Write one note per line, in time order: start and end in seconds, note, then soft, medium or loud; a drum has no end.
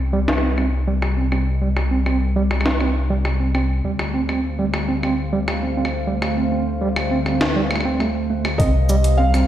0.00 3.81 C2 medium
0.00 3.84 C3 medium
0.00 3.84 G3 medium
0.00 3.84 A#4 medium
0.00 3.84 D#5 medium
0.00 0.74 F5 medium
0.13 0.19 G3 medium
0.28 cross-stick soft
0.28 snare loud
0.33 cross-stick soft
0.38 cross-stick medium
0.43 0.49 C4 medium
0.58 0.67 C4 medium
0.58 cross-stick soft
0.87 0.93 G3 medium
1.02 cross-stick medium
1.17 1.23 C4 medium
1.32 1.42 C4 medium
1.32 cross-stick soft
1.62 1.67 G3 medium
1.77 cross-stick medium
1.91 1.97 C4 medium
2.06 2.16 C4 medium
2.06 cross-stick medium
2.36 2.42 G3 medium
2.51 cross-stick medium
2.61 cross-stick medium
2.66 2.71 C4 medium
2.66 snare loud
2.71 cross-stick soft
2.81 2.90 C4 medium
2.81 cross-stick soft
3.10 3.16 G3 medium
3.25 cross-stick medium
3.40 3.46 C4 medium
3.55 3.64 C4 medium
3.55 cross-stick soft
3.84 8.57 D2 medium
3.84 8.60 D3 medium
3.84 3.90 G3 medium
3.93 8.60 A3 medium
3.99 cross-stick medium
4.14 4.20 C4 medium
4.14 9.47 C5 medium
4.19 9.47 F5 medium
4.29 4.39 C4 medium
4.29 cross-stick soft
4.59 4.64 G3 medium
4.74 cross-stick medium
4.88 4.94 C4 medium
5.03 5.13 C4 medium
5.03 cross-stick soft
5.33 5.39 G3 medium
5.48 cross-stick medium
5.63 5.68 C4 medium
5.77 5.87 C4 medium
5.85 cross-stick soft
6.07 6.13 G3 medium
6.22 cross-stick medium
6.37 6.43 C4 medium
6.52 6.61 C4 medium
6.81 6.87 G3 loud
6.96 cross-stick medium
7.11 7.17 C4 medium
7.26 7.36 C4 medium
7.26 cross-stick soft
7.41 snare loud
7.56 7.61 G3 medium
7.71 7.80 A3 medium
7.71 cross-stick medium
7.76 cross-stick medium
7.81 cross-stick soft
7.85 8.00 C4 medium
8.00 8.14 A3 medium
8.00 cross-stick soft
8.30 8.44 A3 medium
8.45 cross-stick medium
8.58 9.44 C2 loud
8.58 9.47 C3 medium
8.58 8.69 C4 medium
8.58 9.20 D#5 medium
8.58 kick loud
8.58 closed hi-hat medium
8.89 9.47 G3 medium
8.89 8.95 G3 loud
8.89 closed hi-hat soft
8.89 shaker medium
9.04 closed hi-hat medium
9.15 9.47 A#4 medium
9.15 9.47 F5 loud
9.19 9.25 C4 medium
9.29 9.47 D#5 medium
9.34 9.44 C4 medium
9.34 cross-stick medium